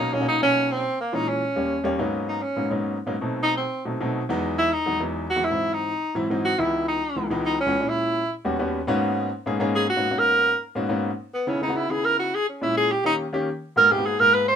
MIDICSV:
0, 0, Header, 1, 3, 480
1, 0, Start_track
1, 0, Key_signature, 5, "minor"
1, 0, Tempo, 287219
1, 1409, Time_signature, 4, 2, 24, 8
1, 24326, End_track
2, 0, Start_track
2, 0, Title_t, "Tenor saxophone"
2, 0, Program_c, 0, 66
2, 0, Note_on_c, 0, 63, 99
2, 225, Note_on_c, 0, 61, 89
2, 250, Note_off_c, 0, 63, 0
2, 456, Note_off_c, 0, 61, 0
2, 472, Note_on_c, 0, 63, 97
2, 684, Note_off_c, 0, 63, 0
2, 714, Note_on_c, 0, 61, 107
2, 1193, Note_on_c, 0, 60, 92
2, 1218, Note_off_c, 0, 61, 0
2, 1661, Note_off_c, 0, 60, 0
2, 1674, Note_on_c, 0, 58, 82
2, 1909, Note_on_c, 0, 63, 90
2, 1934, Note_off_c, 0, 58, 0
2, 2149, Note_on_c, 0, 61, 81
2, 2174, Note_off_c, 0, 63, 0
2, 3099, Note_off_c, 0, 61, 0
2, 3823, Note_on_c, 0, 63, 74
2, 4047, Note_on_c, 0, 61, 82
2, 4072, Note_off_c, 0, 63, 0
2, 4529, Note_off_c, 0, 61, 0
2, 5729, Note_on_c, 0, 63, 102
2, 5953, Note_off_c, 0, 63, 0
2, 5964, Note_on_c, 0, 60, 74
2, 6414, Note_off_c, 0, 60, 0
2, 7658, Note_on_c, 0, 64, 95
2, 7900, Note_on_c, 0, 63, 101
2, 7925, Note_off_c, 0, 64, 0
2, 8376, Note_off_c, 0, 63, 0
2, 8857, Note_on_c, 0, 66, 98
2, 9095, Note_on_c, 0, 64, 86
2, 9121, Note_off_c, 0, 66, 0
2, 9584, Note_on_c, 0, 63, 86
2, 9609, Note_off_c, 0, 64, 0
2, 10298, Note_off_c, 0, 63, 0
2, 10780, Note_on_c, 0, 66, 108
2, 11018, Note_on_c, 0, 64, 90
2, 11043, Note_off_c, 0, 66, 0
2, 11488, Note_off_c, 0, 64, 0
2, 11498, Note_on_c, 0, 63, 80
2, 12165, Note_off_c, 0, 63, 0
2, 12459, Note_on_c, 0, 63, 95
2, 12679, Note_off_c, 0, 63, 0
2, 12705, Note_on_c, 0, 61, 102
2, 13185, Note_on_c, 0, 64, 92
2, 13210, Note_off_c, 0, 61, 0
2, 13898, Note_off_c, 0, 64, 0
2, 16299, Note_on_c, 0, 68, 106
2, 16519, Note_off_c, 0, 68, 0
2, 16539, Note_on_c, 0, 66, 111
2, 17021, Note_on_c, 0, 70, 108
2, 17047, Note_off_c, 0, 66, 0
2, 17736, Note_off_c, 0, 70, 0
2, 18951, Note_on_c, 0, 59, 85
2, 19193, Note_on_c, 0, 61, 87
2, 19218, Note_off_c, 0, 59, 0
2, 19416, Note_off_c, 0, 61, 0
2, 19426, Note_on_c, 0, 63, 85
2, 19654, Note_on_c, 0, 64, 88
2, 19679, Note_off_c, 0, 63, 0
2, 19899, Note_on_c, 0, 68, 102
2, 19924, Note_off_c, 0, 64, 0
2, 20131, Note_on_c, 0, 70, 115
2, 20156, Note_off_c, 0, 68, 0
2, 20365, Note_off_c, 0, 70, 0
2, 20375, Note_on_c, 0, 66, 99
2, 20632, Note_on_c, 0, 68, 110
2, 20657, Note_off_c, 0, 66, 0
2, 20861, Note_off_c, 0, 68, 0
2, 20875, Note_on_c, 0, 61, 53
2, 21100, Note_on_c, 0, 64, 87
2, 21125, Note_off_c, 0, 61, 0
2, 21330, Note_off_c, 0, 64, 0
2, 21340, Note_on_c, 0, 68, 113
2, 21584, Note_on_c, 0, 67, 101
2, 21609, Note_off_c, 0, 68, 0
2, 21816, Note_off_c, 0, 67, 0
2, 21824, Note_on_c, 0, 63, 105
2, 21963, Note_off_c, 0, 63, 0
2, 23014, Note_on_c, 0, 70, 101
2, 23257, Note_on_c, 0, 67, 96
2, 23282, Note_off_c, 0, 70, 0
2, 23496, Note_on_c, 0, 68, 103
2, 23521, Note_off_c, 0, 67, 0
2, 23723, Note_on_c, 0, 70, 122
2, 23748, Note_off_c, 0, 68, 0
2, 23963, Note_on_c, 0, 71, 104
2, 23988, Note_off_c, 0, 70, 0
2, 24190, Note_off_c, 0, 71, 0
2, 24200, Note_on_c, 0, 72, 113
2, 24326, Note_off_c, 0, 72, 0
2, 24326, End_track
3, 0, Start_track
3, 0, Title_t, "Grand piano"
3, 0, Program_c, 1, 0
3, 215, Note_on_c, 1, 47, 73
3, 221, Note_on_c, 1, 54, 68
3, 223, Note_on_c, 1, 58, 65
3, 228, Note_on_c, 1, 61, 72
3, 233, Note_on_c, 1, 63, 92
3, 295, Note_off_c, 1, 47, 0
3, 299, Note_off_c, 1, 54, 0
3, 300, Note_off_c, 1, 58, 0
3, 302, Note_off_c, 1, 61, 0
3, 304, Note_off_c, 1, 63, 0
3, 340, Note_on_c, 1, 47, 79
3, 344, Note_on_c, 1, 54, 71
3, 350, Note_on_c, 1, 61, 80
3, 353, Note_on_c, 1, 58, 81
3, 356, Note_on_c, 1, 63, 96
3, 586, Note_off_c, 1, 47, 0
3, 588, Note_off_c, 1, 54, 0
3, 591, Note_off_c, 1, 61, 0
3, 592, Note_off_c, 1, 58, 0
3, 594, Note_off_c, 1, 63, 0
3, 689, Note_on_c, 1, 47, 74
3, 694, Note_on_c, 1, 54, 62
3, 698, Note_on_c, 1, 58, 75
3, 700, Note_on_c, 1, 61, 69
3, 708, Note_on_c, 1, 63, 75
3, 1360, Note_off_c, 1, 47, 0
3, 1363, Note_off_c, 1, 54, 0
3, 1365, Note_off_c, 1, 58, 0
3, 1366, Note_off_c, 1, 61, 0
3, 1370, Note_off_c, 1, 63, 0
3, 1884, Note_on_c, 1, 46, 81
3, 1890, Note_on_c, 1, 52, 75
3, 1894, Note_on_c, 1, 61, 87
3, 1895, Note_on_c, 1, 56, 77
3, 2366, Note_off_c, 1, 46, 0
3, 2369, Note_off_c, 1, 52, 0
3, 2372, Note_off_c, 1, 56, 0
3, 2372, Note_off_c, 1, 61, 0
3, 2604, Note_on_c, 1, 39, 67
3, 2607, Note_on_c, 1, 55, 64
3, 2617, Note_on_c, 1, 58, 66
3, 2618, Note_on_c, 1, 61, 86
3, 2942, Note_off_c, 1, 39, 0
3, 2944, Note_off_c, 1, 55, 0
3, 2949, Note_off_c, 1, 58, 0
3, 2949, Note_off_c, 1, 61, 0
3, 3070, Note_on_c, 1, 39, 96
3, 3077, Note_on_c, 1, 55, 82
3, 3079, Note_on_c, 1, 58, 88
3, 3091, Note_on_c, 1, 61, 110
3, 3302, Note_off_c, 1, 58, 0
3, 3310, Note_off_c, 1, 61, 0
3, 3320, Note_off_c, 1, 39, 0
3, 3323, Note_off_c, 1, 55, 0
3, 3324, Note_on_c, 1, 44, 95
3, 3324, Note_on_c, 1, 54, 89
3, 3327, Note_on_c, 1, 58, 85
3, 3329, Note_on_c, 1, 59, 94
3, 3335, Note_on_c, 1, 61, 84
3, 3336, Note_on_c, 1, 63, 99
3, 3999, Note_off_c, 1, 44, 0
3, 3999, Note_off_c, 1, 54, 0
3, 4000, Note_off_c, 1, 58, 0
3, 4002, Note_off_c, 1, 59, 0
3, 4004, Note_off_c, 1, 61, 0
3, 4005, Note_off_c, 1, 63, 0
3, 4283, Note_on_c, 1, 44, 80
3, 4287, Note_on_c, 1, 54, 67
3, 4291, Note_on_c, 1, 59, 65
3, 4292, Note_on_c, 1, 58, 73
3, 4294, Note_on_c, 1, 61, 60
3, 4299, Note_on_c, 1, 63, 73
3, 4454, Note_off_c, 1, 44, 0
3, 4457, Note_off_c, 1, 54, 0
3, 4459, Note_off_c, 1, 58, 0
3, 4459, Note_off_c, 1, 59, 0
3, 4460, Note_off_c, 1, 61, 0
3, 4463, Note_off_c, 1, 63, 0
3, 4514, Note_on_c, 1, 44, 90
3, 4516, Note_on_c, 1, 54, 80
3, 4520, Note_on_c, 1, 58, 67
3, 4522, Note_on_c, 1, 59, 73
3, 4528, Note_on_c, 1, 61, 81
3, 4535, Note_on_c, 1, 63, 93
3, 4942, Note_off_c, 1, 44, 0
3, 4943, Note_off_c, 1, 54, 0
3, 4945, Note_off_c, 1, 58, 0
3, 4946, Note_off_c, 1, 59, 0
3, 4949, Note_off_c, 1, 61, 0
3, 4953, Note_off_c, 1, 63, 0
3, 5120, Note_on_c, 1, 44, 86
3, 5125, Note_on_c, 1, 58, 81
3, 5126, Note_on_c, 1, 54, 79
3, 5126, Note_on_c, 1, 59, 77
3, 5134, Note_on_c, 1, 61, 75
3, 5135, Note_on_c, 1, 63, 99
3, 5245, Note_off_c, 1, 44, 0
3, 5248, Note_off_c, 1, 54, 0
3, 5248, Note_off_c, 1, 58, 0
3, 5249, Note_off_c, 1, 59, 0
3, 5252, Note_off_c, 1, 61, 0
3, 5253, Note_off_c, 1, 63, 0
3, 5367, Note_on_c, 1, 47, 88
3, 5367, Note_on_c, 1, 54, 66
3, 5371, Note_on_c, 1, 57, 71
3, 5377, Note_on_c, 1, 60, 82
3, 5383, Note_on_c, 1, 63, 85
3, 6041, Note_off_c, 1, 47, 0
3, 6041, Note_off_c, 1, 54, 0
3, 6043, Note_off_c, 1, 57, 0
3, 6046, Note_off_c, 1, 60, 0
3, 6049, Note_off_c, 1, 63, 0
3, 6438, Note_on_c, 1, 47, 75
3, 6439, Note_on_c, 1, 54, 62
3, 6448, Note_on_c, 1, 57, 68
3, 6452, Note_on_c, 1, 63, 77
3, 6453, Note_on_c, 1, 60, 70
3, 6613, Note_off_c, 1, 47, 0
3, 6613, Note_off_c, 1, 54, 0
3, 6618, Note_off_c, 1, 57, 0
3, 6620, Note_off_c, 1, 60, 0
3, 6620, Note_off_c, 1, 63, 0
3, 6694, Note_on_c, 1, 47, 92
3, 6694, Note_on_c, 1, 54, 84
3, 6701, Note_on_c, 1, 57, 84
3, 6702, Note_on_c, 1, 60, 78
3, 6710, Note_on_c, 1, 63, 102
3, 7029, Note_off_c, 1, 47, 0
3, 7029, Note_off_c, 1, 54, 0
3, 7032, Note_off_c, 1, 57, 0
3, 7033, Note_off_c, 1, 60, 0
3, 7037, Note_off_c, 1, 63, 0
3, 7172, Note_on_c, 1, 54, 97
3, 7173, Note_on_c, 1, 40, 100
3, 7179, Note_on_c, 1, 56, 98
3, 7181, Note_on_c, 1, 59, 101
3, 7190, Note_on_c, 1, 63, 125
3, 7844, Note_off_c, 1, 40, 0
3, 7844, Note_off_c, 1, 54, 0
3, 7847, Note_off_c, 1, 56, 0
3, 7849, Note_off_c, 1, 59, 0
3, 7853, Note_off_c, 1, 63, 0
3, 8119, Note_on_c, 1, 40, 72
3, 8123, Note_on_c, 1, 54, 75
3, 8127, Note_on_c, 1, 56, 69
3, 8136, Note_on_c, 1, 59, 68
3, 8140, Note_on_c, 1, 63, 77
3, 8293, Note_off_c, 1, 40, 0
3, 8295, Note_off_c, 1, 54, 0
3, 8298, Note_off_c, 1, 56, 0
3, 8302, Note_off_c, 1, 59, 0
3, 8304, Note_off_c, 1, 63, 0
3, 8362, Note_on_c, 1, 40, 92
3, 8362, Note_on_c, 1, 54, 85
3, 8370, Note_on_c, 1, 56, 76
3, 8374, Note_on_c, 1, 63, 84
3, 8378, Note_on_c, 1, 59, 73
3, 8787, Note_off_c, 1, 40, 0
3, 8787, Note_off_c, 1, 54, 0
3, 8791, Note_off_c, 1, 56, 0
3, 8793, Note_off_c, 1, 63, 0
3, 8795, Note_off_c, 1, 59, 0
3, 8956, Note_on_c, 1, 40, 75
3, 8961, Note_on_c, 1, 56, 65
3, 8965, Note_on_c, 1, 54, 71
3, 8970, Note_on_c, 1, 59, 64
3, 8972, Note_on_c, 1, 66, 84
3, 9084, Note_off_c, 1, 40, 0
3, 9086, Note_off_c, 1, 56, 0
3, 9088, Note_off_c, 1, 54, 0
3, 9091, Note_off_c, 1, 59, 0
3, 9092, Note_off_c, 1, 66, 0
3, 9197, Note_on_c, 1, 44, 64
3, 9199, Note_on_c, 1, 52, 60
3, 9206, Note_on_c, 1, 54, 64
3, 9212, Note_on_c, 1, 60, 58
3, 9218, Note_on_c, 1, 63, 75
3, 9877, Note_off_c, 1, 44, 0
3, 9877, Note_off_c, 1, 52, 0
3, 9881, Note_off_c, 1, 54, 0
3, 9884, Note_off_c, 1, 60, 0
3, 9887, Note_off_c, 1, 63, 0
3, 10275, Note_on_c, 1, 44, 80
3, 10275, Note_on_c, 1, 52, 82
3, 10281, Note_on_c, 1, 54, 79
3, 10286, Note_on_c, 1, 60, 79
3, 10293, Note_on_c, 1, 64, 104
3, 10451, Note_off_c, 1, 44, 0
3, 10452, Note_off_c, 1, 52, 0
3, 10455, Note_off_c, 1, 54, 0
3, 10457, Note_off_c, 1, 60, 0
3, 10460, Note_off_c, 1, 64, 0
3, 10529, Note_on_c, 1, 44, 88
3, 10533, Note_on_c, 1, 52, 84
3, 10540, Note_on_c, 1, 54, 84
3, 10541, Note_on_c, 1, 60, 80
3, 10550, Note_on_c, 1, 63, 104
3, 10866, Note_off_c, 1, 44, 0
3, 10868, Note_off_c, 1, 52, 0
3, 10872, Note_off_c, 1, 54, 0
3, 10872, Note_off_c, 1, 60, 0
3, 10877, Note_off_c, 1, 63, 0
3, 11000, Note_on_c, 1, 37, 87
3, 11003, Note_on_c, 1, 52, 78
3, 11012, Note_on_c, 1, 56, 70
3, 11013, Note_on_c, 1, 63, 85
3, 11014, Note_on_c, 1, 59, 83
3, 11678, Note_off_c, 1, 37, 0
3, 11679, Note_off_c, 1, 52, 0
3, 11684, Note_off_c, 1, 56, 0
3, 11684, Note_off_c, 1, 63, 0
3, 11685, Note_off_c, 1, 59, 0
3, 11961, Note_on_c, 1, 37, 71
3, 11962, Note_on_c, 1, 52, 64
3, 11969, Note_on_c, 1, 56, 66
3, 11974, Note_on_c, 1, 59, 67
3, 11974, Note_on_c, 1, 63, 79
3, 12135, Note_off_c, 1, 37, 0
3, 12135, Note_off_c, 1, 52, 0
3, 12138, Note_off_c, 1, 56, 0
3, 12141, Note_off_c, 1, 59, 0
3, 12141, Note_off_c, 1, 63, 0
3, 12201, Note_on_c, 1, 37, 95
3, 12206, Note_on_c, 1, 52, 93
3, 12213, Note_on_c, 1, 56, 93
3, 12217, Note_on_c, 1, 59, 90
3, 12219, Note_on_c, 1, 63, 106
3, 12626, Note_off_c, 1, 37, 0
3, 12629, Note_off_c, 1, 52, 0
3, 12632, Note_off_c, 1, 56, 0
3, 12634, Note_off_c, 1, 59, 0
3, 12636, Note_off_c, 1, 63, 0
3, 12801, Note_on_c, 1, 37, 77
3, 12809, Note_on_c, 1, 52, 66
3, 12811, Note_on_c, 1, 56, 72
3, 12820, Note_on_c, 1, 59, 74
3, 12822, Note_on_c, 1, 61, 88
3, 12927, Note_off_c, 1, 37, 0
3, 12931, Note_off_c, 1, 52, 0
3, 12932, Note_off_c, 1, 56, 0
3, 12936, Note_off_c, 1, 59, 0
3, 12937, Note_off_c, 1, 61, 0
3, 13041, Note_on_c, 1, 46, 73
3, 13048, Note_on_c, 1, 56, 64
3, 13056, Note_on_c, 1, 61, 66
3, 13059, Note_on_c, 1, 64, 73
3, 13719, Note_off_c, 1, 46, 0
3, 13722, Note_off_c, 1, 56, 0
3, 13726, Note_off_c, 1, 61, 0
3, 13727, Note_off_c, 1, 64, 0
3, 14116, Note_on_c, 1, 39, 92
3, 14119, Note_on_c, 1, 59, 85
3, 14121, Note_on_c, 1, 55, 77
3, 14128, Note_on_c, 1, 61, 80
3, 14134, Note_on_c, 1, 66, 98
3, 14292, Note_off_c, 1, 39, 0
3, 14294, Note_off_c, 1, 59, 0
3, 14295, Note_off_c, 1, 55, 0
3, 14298, Note_off_c, 1, 61, 0
3, 14301, Note_off_c, 1, 66, 0
3, 14356, Note_on_c, 1, 39, 91
3, 14356, Note_on_c, 1, 55, 81
3, 14361, Note_on_c, 1, 59, 93
3, 14367, Note_on_c, 1, 61, 85
3, 14369, Note_on_c, 1, 66, 95
3, 14700, Note_off_c, 1, 39, 0
3, 14700, Note_off_c, 1, 55, 0
3, 14702, Note_off_c, 1, 59, 0
3, 14705, Note_off_c, 1, 61, 0
3, 14707, Note_off_c, 1, 66, 0
3, 14829, Note_on_c, 1, 44, 116
3, 14839, Note_on_c, 1, 58, 94
3, 14841, Note_on_c, 1, 59, 104
3, 14843, Note_on_c, 1, 61, 109
3, 14844, Note_on_c, 1, 66, 124
3, 14850, Note_on_c, 1, 63, 94
3, 15512, Note_off_c, 1, 44, 0
3, 15517, Note_off_c, 1, 58, 0
3, 15518, Note_off_c, 1, 59, 0
3, 15519, Note_off_c, 1, 61, 0
3, 15520, Note_off_c, 1, 66, 0
3, 15523, Note_off_c, 1, 63, 0
3, 15809, Note_on_c, 1, 44, 96
3, 15811, Note_on_c, 1, 58, 87
3, 15818, Note_on_c, 1, 59, 82
3, 15819, Note_on_c, 1, 61, 78
3, 15827, Note_on_c, 1, 63, 89
3, 15829, Note_on_c, 1, 68, 107
3, 15978, Note_off_c, 1, 44, 0
3, 15979, Note_off_c, 1, 58, 0
3, 15983, Note_off_c, 1, 59, 0
3, 15983, Note_off_c, 1, 61, 0
3, 15987, Note_off_c, 1, 63, 0
3, 15988, Note_off_c, 1, 68, 0
3, 16035, Note_on_c, 1, 44, 101
3, 16039, Note_on_c, 1, 59, 88
3, 16041, Note_on_c, 1, 58, 98
3, 16047, Note_on_c, 1, 61, 95
3, 16047, Note_on_c, 1, 63, 97
3, 16058, Note_on_c, 1, 68, 112
3, 16463, Note_off_c, 1, 44, 0
3, 16465, Note_off_c, 1, 59, 0
3, 16466, Note_off_c, 1, 58, 0
3, 16469, Note_off_c, 1, 61, 0
3, 16469, Note_off_c, 1, 63, 0
3, 16475, Note_off_c, 1, 68, 0
3, 16648, Note_on_c, 1, 44, 74
3, 16648, Note_on_c, 1, 58, 70
3, 16657, Note_on_c, 1, 61, 73
3, 16658, Note_on_c, 1, 59, 70
3, 16664, Note_on_c, 1, 63, 71
3, 16667, Note_on_c, 1, 66, 80
3, 16817, Note_off_c, 1, 44, 0
3, 16818, Note_off_c, 1, 58, 0
3, 16822, Note_off_c, 1, 59, 0
3, 16822, Note_off_c, 1, 61, 0
3, 16825, Note_off_c, 1, 63, 0
3, 16827, Note_off_c, 1, 66, 0
3, 16883, Note_on_c, 1, 44, 67
3, 16889, Note_on_c, 1, 58, 70
3, 16890, Note_on_c, 1, 59, 65
3, 16898, Note_on_c, 1, 61, 65
3, 16901, Note_on_c, 1, 63, 65
3, 16903, Note_on_c, 1, 66, 88
3, 17559, Note_off_c, 1, 44, 0
3, 17562, Note_off_c, 1, 58, 0
3, 17562, Note_off_c, 1, 59, 0
3, 17566, Note_off_c, 1, 61, 0
3, 17568, Note_off_c, 1, 63, 0
3, 17569, Note_off_c, 1, 66, 0
3, 17969, Note_on_c, 1, 44, 91
3, 17973, Note_on_c, 1, 58, 89
3, 17976, Note_on_c, 1, 59, 80
3, 17984, Note_on_c, 1, 61, 82
3, 17987, Note_on_c, 1, 63, 81
3, 17989, Note_on_c, 1, 66, 103
3, 18138, Note_off_c, 1, 44, 0
3, 18140, Note_off_c, 1, 58, 0
3, 18141, Note_off_c, 1, 59, 0
3, 18145, Note_off_c, 1, 61, 0
3, 18147, Note_off_c, 1, 63, 0
3, 18148, Note_off_c, 1, 66, 0
3, 18194, Note_on_c, 1, 44, 96
3, 18194, Note_on_c, 1, 58, 86
3, 18200, Note_on_c, 1, 59, 94
3, 18205, Note_on_c, 1, 61, 88
3, 18210, Note_on_c, 1, 63, 88
3, 18211, Note_on_c, 1, 66, 98
3, 18538, Note_off_c, 1, 44, 0
3, 18538, Note_off_c, 1, 58, 0
3, 18541, Note_off_c, 1, 59, 0
3, 18544, Note_off_c, 1, 61, 0
3, 18546, Note_off_c, 1, 63, 0
3, 18547, Note_off_c, 1, 66, 0
3, 19167, Note_on_c, 1, 49, 82
3, 19169, Note_on_c, 1, 59, 80
3, 19176, Note_on_c, 1, 63, 75
3, 19183, Note_on_c, 1, 64, 93
3, 19337, Note_off_c, 1, 49, 0
3, 19338, Note_off_c, 1, 59, 0
3, 19341, Note_off_c, 1, 63, 0
3, 19345, Note_off_c, 1, 64, 0
3, 19407, Note_on_c, 1, 49, 82
3, 19413, Note_on_c, 1, 59, 71
3, 19420, Note_on_c, 1, 63, 65
3, 19429, Note_on_c, 1, 64, 80
3, 19493, Note_off_c, 1, 49, 0
3, 19496, Note_off_c, 1, 59, 0
3, 19499, Note_off_c, 1, 63, 0
3, 19504, Note_off_c, 1, 64, 0
3, 19527, Note_on_c, 1, 49, 80
3, 19532, Note_on_c, 1, 59, 80
3, 19538, Note_on_c, 1, 63, 72
3, 19550, Note_on_c, 1, 66, 88
3, 19780, Note_off_c, 1, 49, 0
3, 19783, Note_off_c, 1, 59, 0
3, 19786, Note_off_c, 1, 63, 0
3, 19792, Note_off_c, 1, 66, 0
3, 19881, Note_on_c, 1, 49, 75
3, 19889, Note_on_c, 1, 59, 64
3, 19889, Note_on_c, 1, 63, 60
3, 19898, Note_on_c, 1, 64, 85
3, 20557, Note_off_c, 1, 49, 0
3, 20561, Note_off_c, 1, 59, 0
3, 20561, Note_off_c, 1, 63, 0
3, 20566, Note_off_c, 1, 64, 0
3, 21082, Note_on_c, 1, 46, 82
3, 21088, Note_on_c, 1, 56, 77
3, 21094, Note_on_c, 1, 61, 79
3, 21100, Note_on_c, 1, 64, 86
3, 21565, Note_off_c, 1, 46, 0
3, 21568, Note_off_c, 1, 56, 0
3, 21571, Note_off_c, 1, 61, 0
3, 21574, Note_off_c, 1, 64, 0
3, 21796, Note_on_c, 1, 51, 84
3, 21798, Note_on_c, 1, 58, 74
3, 21812, Note_on_c, 1, 61, 67
3, 21815, Note_on_c, 1, 67, 90
3, 22138, Note_off_c, 1, 51, 0
3, 22139, Note_off_c, 1, 58, 0
3, 22146, Note_off_c, 1, 61, 0
3, 22147, Note_off_c, 1, 67, 0
3, 22270, Note_on_c, 1, 51, 92
3, 22274, Note_on_c, 1, 58, 82
3, 22284, Note_on_c, 1, 61, 92
3, 22292, Note_on_c, 1, 67, 107
3, 22518, Note_off_c, 1, 51, 0
3, 22520, Note_off_c, 1, 58, 0
3, 22525, Note_off_c, 1, 61, 0
3, 22529, Note_off_c, 1, 67, 0
3, 22995, Note_on_c, 1, 44, 87
3, 22996, Note_on_c, 1, 58, 78
3, 23005, Note_on_c, 1, 59, 74
3, 23007, Note_on_c, 1, 66, 96
3, 23011, Note_on_c, 1, 63, 77
3, 23168, Note_off_c, 1, 44, 0
3, 23168, Note_off_c, 1, 58, 0
3, 23173, Note_off_c, 1, 59, 0
3, 23174, Note_off_c, 1, 66, 0
3, 23176, Note_off_c, 1, 63, 0
3, 23246, Note_on_c, 1, 59, 73
3, 23247, Note_on_c, 1, 44, 81
3, 23250, Note_on_c, 1, 58, 69
3, 23257, Note_on_c, 1, 63, 75
3, 23259, Note_on_c, 1, 68, 92
3, 23330, Note_off_c, 1, 44, 0
3, 23330, Note_off_c, 1, 59, 0
3, 23331, Note_off_c, 1, 58, 0
3, 23335, Note_off_c, 1, 63, 0
3, 23336, Note_off_c, 1, 68, 0
3, 23356, Note_on_c, 1, 44, 77
3, 23359, Note_on_c, 1, 58, 72
3, 23364, Note_on_c, 1, 59, 71
3, 23369, Note_on_c, 1, 66, 90
3, 23371, Note_on_c, 1, 63, 81
3, 23612, Note_off_c, 1, 44, 0
3, 23613, Note_off_c, 1, 58, 0
3, 23616, Note_off_c, 1, 59, 0
3, 23618, Note_off_c, 1, 66, 0
3, 23619, Note_off_c, 1, 63, 0
3, 23726, Note_on_c, 1, 44, 82
3, 23731, Note_on_c, 1, 58, 69
3, 23733, Note_on_c, 1, 59, 62
3, 23739, Note_on_c, 1, 63, 71
3, 23742, Note_on_c, 1, 68, 82
3, 24326, Note_off_c, 1, 44, 0
3, 24326, Note_off_c, 1, 58, 0
3, 24326, Note_off_c, 1, 59, 0
3, 24326, Note_off_c, 1, 63, 0
3, 24326, Note_off_c, 1, 68, 0
3, 24326, End_track
0, 0, End_of_file